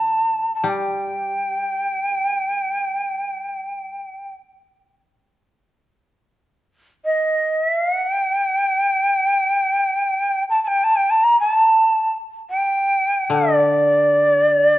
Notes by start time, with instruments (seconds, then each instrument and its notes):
Already playing: koto D3, shakuhachi A5
0.55 shakuhachi A5
0.64 koto G3, shakuhachi A5
0.69 shakuhachi G5
7.05 shakuhachi D#5
7.56 shakuhachi E5
7.75 shakuhachi F5
7.95 shakuhachi F#5
8.14 shakuhachi G5
10.49 shakuhachi A5
10.64 shakuhachi G5 A5
10.84 shakuhachi A5
10.96 shakuhachi G5
11.10 shakuhachi A5
11.23 shakuhachi A#5
11.40 shakuhachi G#5
11.53 shakuhachi A5
12.50 shakuhachi G5
13.30 koto D3, shakuhachi D5